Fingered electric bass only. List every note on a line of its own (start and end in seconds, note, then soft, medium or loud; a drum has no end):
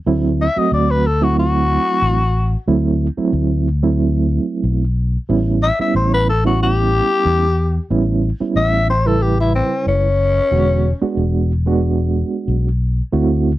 0.07 0.47 D2 medium
0.57 muted fingered electric bass stroke soft
0.72 1.77 D2 medium
2.02 2.55 A1 medium
2.68 3.08 D2 medium
3.18 muted fingered electric bass stroke soft
3.33 4.38 D2 medium
4.64 5.16 B1 medium
5.30 5.70 A1 medium
5.79 muted fingered electric bass stroke soft
5.95 6.99 A1 medium
7.25 7.78 E2 medium
7.91 8.31 A1 medium
8.41 muted fingered electric bass stroke soft
8.56 9.61 A1 medium
9.86 10.39 F#1 medium
10.52 10.92 E1 medium
11.03 muted fingered electric bass stroke soft
11.17 12.22 E1 medium
12.48 13.00 B1 medium
13.13 13.53 D2 medium